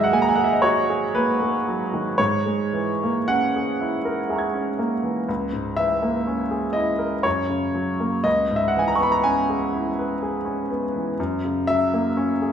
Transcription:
Already playing: G#2 D#3 F#3 G#3 D#5 E5
0.04 F#5
0.12 A#3 G#5
0.22 A#5
0.29 G#5
0.36 G#4 F#5
0.44 E5
0.53 D#5
0.62 F#4 C#5
0.90 G#4
1.15 A#3 B4
1.42 G#3
1.68 F#3
1.94 D#3
2.18 G#2 C#5
2.46 G#3
2.73 E3
3.03 A#3
3.28 C#4 F#5
3.56 G#4
3.81 E4
4.05 A#4
4.29 G#4 E5 A#5
4.36 C#6 G#6
4.53 C#4
4.79 A#3
5.03 E3
5.29 C#2
5.53 G#2
5.76 E3 E5
6.02 A#3
6.27 C#4
6.51 G#4
6.73 E4 D#5
6.99 A#4
7.23 F#2 C#5
7.50 C#3
7.75 F#3
8.00 A#3
8.24 C#2 D#5
8.51 G#2
8.56 E5
8.68 F#5
8.77 E3 G#5
8.88 A#5
8.95 C#6
9.00 B3 B5
9.12 A#5
9.24 C#4 G#5
9.50 G#4
9.74 E4
9.99 B4
10.23 G#4
10.45 C#4
10.70 B3
10.96 E3
11.20 F#2
11.45 C#3
11.67 F#3 E5
11.94 A#3
12.17 C#4
12.42 G#4

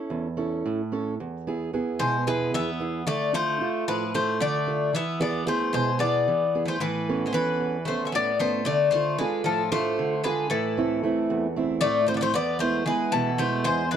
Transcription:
Already playing: C#4 E4 A4
0.10 E2
0.37 C#4 E4 A4
0.66 A2
0.92 C#4 E4 A4
1.20 E2
1.47 B3 E4 G#4
1.73 B3 E4 G#4
1.99 B2 G#3 C5
2.27 G#3 B3 E4 G#4 B4
2.54 E2 B3 E5
2.80 B3 E4 G#4
3.07 D3 A3 D5
3.33 A3 D4 F4 A4 C5
3.61 D4 F4 A4
3.88 A2 F3 B4
4.14 A3 D4 F4 A4 C5
4.40 D3 A3 D5
4.67 D4 F4 A4
4.93 E3 B3 E5
5.20 B3 E4 G#4 D5
5.46 A3 B3 E4 G#4 C5
5.73 B2 G#3 C5
5.98 B3 E4 G#4 D5
6.28 E3
6.55 B3 E4 G#4
6.66 A3 C5
6.80 A2 E3 B4
7.09 B3 C#4 A4
7.26 G#3 C5
7.33 E3 B3 C#4 A4 B4
7.60 E2
7.85 A3 B3 C#4 A4 C5
8.05 C#4 E5
8.12 A2 B3 D5
8.39 A3 B3 C#4 A4 C5
8.65 D3 A3 D5
8.91 A3 D4 F4 C5
8.95 A4
9.18 G#3 D4 F4 A4 B4
9.44 A2 F3 A4
9.71 A3 D4 F4 A4 C5
9.99 D3
10.24 G#3 D4 F4 A4 B4
10.50 A2 E3 A4
10.77 A3 C4 E4
11.03 A3 C4 E4
11.30 E2
11.56 A3 C4 E4
11.81 A2 A3 D5
12.07 A3 C4 E4 C5
12.14 B3 D5
12.21 A3 C5
12.34 E2 B3 D5
12.59 G#3 A3 B3 E4 C5
12.86 G#3 B3 E4 B4
13.12 B2 E3 A4
13.38 G#3 A3 B3 E4 C5
13.64 E2 G#3 C5
13.91 G#3 B4

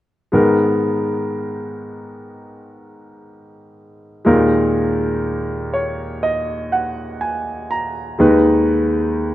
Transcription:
0.32 G#2 D#3 G#3 B3 A#4
4.25 D#2 A#2 G#3 D#4 A#4
5.73 C#5
6.23 D#5
6.72 F#5
7.21 G#5
7.71 A#5
8.19 D#2 D#3 G#3 D#4 B4

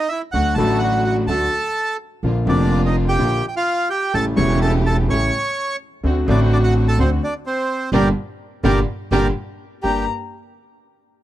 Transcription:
0.09 E4 E5
0.32 D2 D3 F#3 A3 D4 F#4 F#5
0.55 A1 A2 D3 F#3 A3 D4 F#4 A4 A5
0.60 F#4
0.79 F#5
0.83 F#4
1.04 F#4 F#5
1.27 D2 D3 F#3 A3 D4 F#4 A4 A5
2.23 A#1 A#2 D3 F3 A#3 D4 F4
2.45 F1 F2 D3 F3 A#3 D4 F4 D5
2.86 D#4 D#5
3.08 G4 G5
3.18 A#1 A#2 D3 F3 A#3 D4 F4
3.48 G5
3.56 F4 F5
3.90 G4 G5
4.14 A1 A2 C#3 G3 A3 C#4 E4 G4 A4 A5
4.34 E1 E2 C#3 G3 A3 C#4 G4 C#5 C#6
4.38 E4
4.62 A4 A5
4.86 A4 A5
5.08 A1 A2 C#3 G3 A3 C#4 E4 G4 C#5 C#6
6.03 D2 D3 A3 C4 D4 F#4
6.27 A1 A2 D3 A3 C4 D4 F#4 D5
6.31 F#4
6.52 D4 D5
6.64 F#4 F#5
6.88 A4 A5
6.98 D2 D3 A3 C4 D4 F#4 C5
7.24 D4 D5
7.46 C4 C5
7.92 G1 A#2 D3 G3 A#3 D4 G4 A#4 D5
8.64 G1 A#2 D3 G3 A#3 D4 G4 A#4 D5
9.11 G1 A#2 D3 G3 A#3 D4 G4 A#4 D5
9.83 G1 G2 A#3 D4 G4 A#5

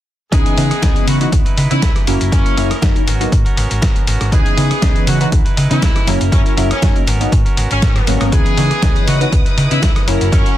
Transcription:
0.32 C#2 E3 G#3 B3 C#4 D#4 E4 G#4 B4, kick, closed hi-hat
0.46 closed hi-hat
0.57 C#3 E3 G#3 B3 C#4 D#4 E4 B4, open hi-hat
0.70 D#4 E4 B4, muted fingered electric bass stroke, cross-stick, closed hi-hat
0.82 C#2 E3 G#3 B3 C#4 D#4 E4 B4 D#5, kick, snare, closed hi-hat
0.95 D#4 E4 B4, closed hi-hat
1.07 C#3 G#3 D#4 E4 F#4 B4, open hi-hat
1.21 E3 B3 C#4 D#4 F#4, closed hi-hat
1.32 C#2, kick, closed hi-hat
1.45 D#4 E4 B4, muted fingered electric bass stroke, closed hi-hat
1.57 C#3 G#3 D#4 E4 B4, open hi-hat
1.70 C#3 E3 B3 C#4 D#4 E4 B4, closed hi-hat
1.82 C#2 G#3 D#4 E4 B4, kick, snare, closed hi-hat
1.96 cross-stick, closed hi-hat
2.07 F#1 F#3 A#3 C#4 E4 A#4, open hi-hat
2.20 F#1 C#4 E4 A#4, closed hi-hat
2.32 F#2 F#3 A#3 C#4 E4 A#4, kick, closed hi-hat
2.46 closed hi-hat
2.57 F#1 F#3 A#3 C#4 E4 A#4, open hi-hat
2.70 C#4 E4 A#4, muted fingered electric bass stroke, cross-stick, closed hi-hat
2.82 F#2 F#3 A#3 C#4 D#4, kick, snare, closed hi-hat
2.95 C#4 E4 A#4, closed hi-hat
3.07 G#1 B3 C#4 F#4 A#4, open hi-hat
3.20 F#3 A#3 B3 D#4, closed hi-hat
3.32 G#2, kick, closed hi-hat
3.45 C#4 F#4 A#4, closed hi-hat
3.57 G#1 B3 C#4 F#4 A#4, open hi-hat
3.70 G#1 C#4 F#4 A#4, closed hi-hat
3.82 B3 A#4, kick, snare, closed hi-hat
3.96 closed hi-hat
4.07 G#1 B3 C#4 F#4 A#4, open hi-hat
4.21 G#1, cross-stick, closed hi-hat
4.32 C#2 E3 G#3 B3 C#4 D#4 E4 G#4 B4, kick, closed hi-hat
4.46 closed hi-hat
4.56 C#3 E3 G#3 B3 C#4 D#4 E4 B4, open hi-hat
4.70 D#4 E4 B4, muted fingered electric bass stroke, cross-stick, closed hi-hat
4.81 C#2 E3 G#3 B3 C#4 D#4 E4 B4 D#5, kick, snare, closed hi-hat
4.95 D#4 E4 B4, closed hi-hat
5.07 C#3 G#3 D#4 E4 F#4 B4, open hi-hat
5.20 E3 B3 C#4 D#4 F#4, closed hi-hat
5.32 C#2, kick, closed hi-hat
5.45 D#4 E4 B4, closed hi-hat
5.57 C#3 G#3 D#4 E4 B4, open hi-hat
5.70 C#3 E3 B3 C#4 D#4 E4 B4, closed hi-hat
5.82 C#2 G#3 E4, kick, snare, closed hi-hat
5.96 cross-stick, closed hi-hat
6.07 F#1 F#3 A#3 C#4 E4 A#4, open hi-hat
6.20 F#1 E4 A#4, closed hi-hat
6.32 F#2 F#3 A#3 C#4 E4 A#4, kick, closed hi-hat
6.46 C#4, closed hi-hat
6.57 F#1 F#3 A#3 C#4 E4 A#4, open hi-hat
6.70 C#4 E4 A#4, muted fingered electric bass stroke, cross-stick, closed hi-hat
6.82 F#2 F#3 A#3 C#4 D#4 E4 A#4, kick, snare, closed hi-hat
6.95 E4 A#4, closed hi-hat
7.07 G#1 B3 C#4 F#4 A#4, open hi-hat
7.20 F#3 A#3 B3 D#4, closed hi-hat
7.32 G#2, kick, closed hi-hat
7.45 C#4 F#4 A#4, closed hi-hat
7.57 G#1 B3 C#4 F#4 A#4, open hi-hat
7.70 G#1 C#4 F#4 A#4, closed hi-hat
7.82 B3 C#4 F#4 A#4, kick, snare, closed hi-hat
7.96 cross-stick, closed hi-hat
8.07 G#1 F#3 A#3 B3 C#4 F#4 A#4, open hi-hat
8.20 G#1 F#3 A#3 B3 C#4 F#4 A#4, cross-stick, closed hi-hat
8.32 C#2 E3 G#3 B3 D#4 E4 G#4 B4 D#6, kick, closed hi-hat
8.46 closed hi-hat
8.57 C#3 E3 G#3 B3 C#4 D#4 E4 B4, open hi-hat
8.70 D#4 E4 B4, muted fingered electric bass stroke, cross-stick, closed hi-hat
8.82 C#2 E3 G#3 B3 C#4 D#4 E4 B4 D#5, kick, snare, closed hi-hat
8.95 D#4 E4 B4, closed hi-hat
9.07 C#3 G#3 D#4 E4 F#4 B4, open hi-hat
9.21 E3 B3 C#4 D#4 F#4, closed hi-hat
9.32 C#2, kick, closed hi-hat
9.45 D#4 E4 B4, muted fingered electric bass stroke, closed hi-hat
9.57 C#3 G#3 D#4 E4 B4, open hi-hat
9.70 C#3 E3 B3 C#4 D#4 E4 B4, closed hi-hat
9.82 C#2 G#3 D#4 E4 B4, kick, snare, closed hi-hat
9.96 cross-stick, closed hi-hat
10.07 F#1 F#3 A#3 C#4 E4 A#4 F#5, open hi-hat
10.21 F#1, closed hi-hat
10.32 F#2 F#3 A#3 C#4 E4 A#4, kick, closed hi-hat
10.46 muted fingered electric bass stroke, closed hi-hat

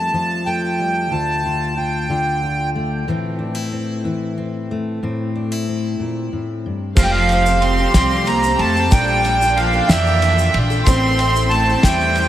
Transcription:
Already playing: F2 F3 G3 A3 F4 A5
0.13 F3 F4
0.46 A3 G5
0.79 G3
1.11 D2 F4 A5
1.45 F4
1.76 F4 G5
2.09 D3 F4
2.43 F4
2.75 A3
3.08 A2 E3 A3 C4 E4
3.39 D4
3.55 E4
3.72 C4
4.04 E3 E4
4.38 C4
4.71 A3
5.03 A2 C4
5.35 D4
5.52 E4
5.68 C4
6.00 A#2
6.33 A2
6.66 G2
6.95 F1 F2 F3 G3 C4 F4 G4 A4 C5 F5 G5, kick, crash, shaker
7.03 G3 G5
7.11 F3 F5
7.29 G3 C4 F4 A4, ride, shaker
7.46 C4 F4 A4, shaker
7.61 C4 C6, ride, shaker
7.78 C4 F4 A4
7.94 C2 F3 G3 C4 F4 A4 C6, kick, snare, ride, shaker
8.11 shaker
8.25 G3 A#3 C4 F4 A4 A#5, ride, shaker
8.43 C4 F4 A4, shaker
8.57 F2 A3 A5, ride
8.75 C4 F4 A4, shaker
8.90 A#1 A#2 G3 A#3 D4 F4 A4 D5 G5, kick, ride, shaker
9.24 A#3 D4 F4 A4, ride, shaker
9.41 D4 F4 A4, shaker
9.55 F3 F5, ride, shaker
9.73 D4 F4 A4
9.88 F2 E3 A#3 D4 A4 E5, snare, ride, shaker
10.06 shaker
10.22 A#3 D4 F4 A4, ride, shaker
10.38 D4 F4 A4, shaker
10.54 A#1, ride
10.70 D4 F4 A4, shaker
10.84 A1 A2 E3 A3 C4 E4 A4 C5 C6, kick, ride, shaker
11.19 A3 C4 E4 A4, ride, shaker
11.36 A3 C4 E4 A4, shaker
11.49 A3 A5, ride, shaker
11.69 A3 C4 E4 A4
11.82 E2 A2 G3 G5, kick, snare, ride, shaker
11.86 E3 A3 C4 E4 A4
12.01 shaker
12.15 A3 C4 E4 A4, ride, shaker

